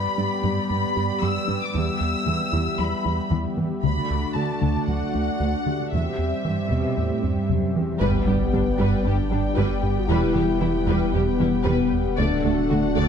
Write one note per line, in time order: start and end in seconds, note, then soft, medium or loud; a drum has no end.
0.00 3.83 G3 medium
0.00 3.84 B3 medium
0.00 3.84 G4 medium
0.00 0.41 A4 soft
0.00 1.75 D5 medium
0.00 0.68 B5 medium
0.17 0.26 G2 soft
0.17 0.34 G3 soft
0.17 0.34 D4 soft
0.43 0.51 G2 medium
0.43 0.60 G2 medium
0.43 0.59 G3 medium
0.70 0.78 G2 soft
0.70 0.86 G2 medium
0.70 0.85 B3 soft
0.70 1.21 B5 medium
0.96 1.04 G2 soft
0.96 1.12 G2 soft
0.96 1.12 G4 soft
1.22 1.30 G2 medium
1.22 1.39 G2 medium
1.22 1.38 G3 medium
1.22 1.62 E6 medium
1.48 1.56 G2 soft
1.48 1.64 G3 medium
1.48 1.64 D4 soft
1.64 1.76 D6 medium
1.74 1.82 E2 medium
1.74 1.90 E2 medium
1.74 1.90 E3 medium
1.74 3.83 E5 medium
1.74 2.79 E6 medium
2.01 2.16 E2 medium
2.26 2.34 E2 soft
2.26 2.43 E3 soft
2.26 2.42 B3 soft
2.53 2.61 E2 medium
2.53 2.69 E2 medium
2.53 2.69 E3 medium
2.79 2.94 E2 medium
2.79 2.87 E2 soft
2.79 2.95 G3 medium
2.79 3.31 B5 medium
3.05 3.13 E2 soft
3.05 3.21 E2 soft
3.05 3.21 E4 medium
3.31 3.39 E2 medium
3.31 3.47 E2 medium
3.31 3.47 E3 medium
3.57 3.65 E2 soft
3.57 3.73 E3 soft
3.57 3.73 B3 soft
3.83 3.91 D2 medium
3.83 3.99 D2 medium
3.83 3.99 D3 medium
3.83 5.92 A3 medium
3.83 5.92 D4 medium
3.83 5.92 F#4 medium
3.83 5.92 D5 medium
3.83 4.32 B5 medium
4.10 4.26 D2 medium
4.35 4.43 D2 soft
4.35 4.52 D3 soft
4.35 4.52 A3 soft
4.35 4.87 A5 medium
4.61 4.69 D2 soft
4.61 4.78 D2 medium
4.61 4.77 D3 medium
4.88 5.03 D2 medium
4.88 4.96 D2 soft
4.88 5.04 F#3 soft
4.88 5.90 F#5 medium
5.14 5.22 D2 soft
5.14 5.30 D2 soft
5.14 5.30 D4 soft
5.40 5.56 D2 medium
5.40 5.49 D2 soft
5.40 5.56 D3 medium
5.66 5.75 D2 soft
5.66 5.82 D3 soft
5.66 5.82 A3 medium
5.66 7.19 G4 soft
5.92 6.08 E2 medium
5.92 6.01 E2 soft
5.92 6.08 C3 medium
5.92 8.00 G3 medium
5.92 8.01 C4 medium
5.92 8.00 G4 medium
5.92 8.01 E5 medium
5.92 7.45 E5 medium
6.19 6.34 E2 medium
6.44 6.69 G2 soft
6.44 6.60 E3 soft
6.44 6.60 G3 soft
6.71 6.86 E2 medium
6.71 6.97 B2 soft
6.71 6.86 C3 medium
6.97 7.13 E2 soft
6.97 7.23 A2 soft
6.97 7.12 E3 soft
7.23 7.39 E2 soft
7.23 7.49 G2 soft
7.23 7.38 C4 soft
7.49 7.65 E2 medium
7.49 7.75 F#2 soft
7.49 7.65 C3 medium
7.75 8.01 E2 soft
7.75 7.91 E3 soft
7.75 7.91 G3 soft
8.00 10.11 G1 medium
8.00 8.09 G1 soft
8.00 8.09 G2 soft
8.00 8.17 G2 medium
8.00 8.25 G3 soft
8.00 8.17 G3 medium
8.00 12.15 G3 medium
8.00 9.01 B3 medium
8.00 12.14 B3 medium
8.00 12.14 G4 medium
8.00 8.25 B4 soft
8.00 10.06 D5 medium
8.00 12.14 G5 soft
8.00 impact medium
8.26 8.35 G1 soft
8.26 8.35 G2 soft
8.26 8.34 G3 soft
8.26 8.43 G3 medium
8.26 8.43 D4 soft
8.26 8.37 G4 soft
8.53 8.61 G1 soft
8.53 8.61 G2 soft
8.53 8.61 G3 soft
8.53 8.69 G3 medium
8.53 8.69 D4 soft
8.53 8.63 D4 soft
8.53 10.06 B4 soft
8.79 8.87 G1 medium
8.79 8.87 G2 soft
8.79 8.96 G2 medium
8.79 9.03 G3 soft
8.79 8.95 G3 medium
8.79 9.04 B4 soft
9.04 9.14 G1 soft
9.04 9.13 G2 soft
9.04 9.22 G2 medium
9.04 9.12 G3 soft
9.04 9.20 B3 medium
9.04 9.57 D4 medium
9.04 9.15 G4 soft
9.30 9.40 G1 soft
9.30 9.39 G2 soft
9.30 9.38 G3 soft
9.30 9.47 G3 medium
9.30 9.47 D4 medium
9.30 9.41 D4 soft
9.56 9.65 G1 medium
9.56 9.65 G2 medium
9.56 9.73 G2 medium
9.56 9.81 G3 medium
9.56 9.73 G3 medium
9.56 9.96 G4 medium
9.56 9.81 B4 soft
9.83 9.99 G2 medium
9.99 10.10 F#4 medium
10.08 12.20 E1 medium
10.08 10.18 E1 medium
10.08 10.25 E2 medium
10.08 10.17 E2 medium
10.08 10.25 E3 medium
10.08 10.34 G3 medium
10.08 10.60 E4 medium
10.08 10.34 B4 medium
10.08 12.19 B4 medium
10.35 10.44 E1 soft
10.35 10.43 E2 soft
10.35 10.51 E3 medium
10.35 10.44 G3 soft
10.35 10.52 B3 soft
10.35 10.44 G4 soft
10.61 10.70 E1 soft
10.61 10.69 E2 soft
10.61 10.77 E3 medium
10.61 10.69 G3 soft
10.61 10.78 B3 medium
10.61 10.69 E4 soft
10.61 11.13 E4 medium
10.86 10.96 E1 medium
10.86 11.03 E2 medium
10.86 10.95 E2 medium
10.86 11.05 E3 medium
10.86 11.11 G3 soft
10.86 11.12 B4 soft
11.13 11.23 E1 soft
11.13 11.29 E2 medium
11.13 11.21 E2 soft
11.13 11.22 G3 soft
11.13 11.31 G3 soft
11.13 11.66 B3 medium
11.13 11.22 G4 soft
11.40 11.48 E1 soft
11.40 11.48 E2 soft
11.40 11.56 E3 medium
11.40 11.48 G3 soft
11.40 11.56 B3 medium
11.40 11.48 E4 soft
11.65 11.75 E1 medium
11.65 11.74 E2 medium
11.65 11.82 E2 medium
11.65 11.82 E3 medium
11.65 11.90 G3 soft
11.65 13.08 B3 soft
11.65 12.18 B3 medium
11.65 11.90 B4 soft
11.65 13.08 B4 soft
11.93 12.08 E2 medium
12.17 13.08 D1 medium
12.17 12.25 D2 medium
12.17 12.26 D2 medium
12.17 12.34 D2 medium
12.17 12.35 D3 medium
12.17 12.42 A3 medium
12.17 13.08 A3 medium
12.17 13.08 D4 medium
12.17 13.08 F#4 medium
12.17 13.08 A4 medium
12.17 12.43 D5 soft
12.17 13.08 F#5 soft
12.43 12.51 D2 soft
12.43 12.52 D2 soft
12.43 12.60 D3 medium
12.43 12.61 A3 medium
12.43 12.54 A3 soft
12.43 13.08 D4 soft
12.43 12.53 A4 soft
12.43 13.08 D5 soft
12.70 12.78 D2 soft
12.70 12.80 D2 soft
12.70 12.87 D3 medium
12.70 12.86 A3 medium
12.70 12.80 A3 soft
12.70 12.78 F#4 soft
12.95 13.03 D2 medium
12.95 13.08 D2 medium
12.95 13.05 D2 medium
12.95 13.08 D3 medium
12.95 13.08 A3 soft
12.95 13.08 D5 medium